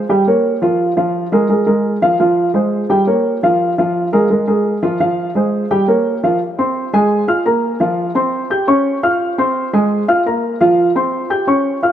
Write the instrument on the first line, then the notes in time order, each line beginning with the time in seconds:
upright piano
0.09 G3 G4 G5
0.27 A#3 A#4 C#5
0.62 F3 F4 F5
0.97 F3 F4 F5
1.32 G#3 G#4 A#4
1.49 G#3 G#4 A#4
1.66 G#3 G#4 A#4
2.02 F3 F4 F5
2.20 F3 F4 F5
2.54 G#3 G#4 C5
2.90 G3 G4 G5
3.07 A#3 A#4 C#5
3.43 F3 F4 F5
3.78 F3 F4 F5
4.13 G#3 G#4 A#4
4.30 G#3 G#4 A#4
4.48 G#3 G#4 A#4
4.83 F3 F4 F5
5.00 F3 F4 F5
5.35 G#3 G#4 C5
5.71 G3 G4 G5
5.88 A#3 A#4 C#5
6.23 F3 F4 F5
6.58 C4 C5 C6
6.93 G#3 G#4 G#5
7.28 F4 F5 F6
7.45 A#3 A#4 A#5
7.80 F3 F4 F5
8.15 C4 C5 C6
8.50 G4 G5 G6
8.68 C#4 C#5 C#6
9.03 F4 F5 F6
9.38 C4 C5 C6
9.73 G#3 G#4 G#5
10.08 F4 F5 F6
10.26 A#3 A#4 A#5
10.61 F3 F4 F5
10.95 C4 C5 C6
11.30 G4 G5 G6
11.47 C#4 C#5 C#6
11.83 F4 F5 F6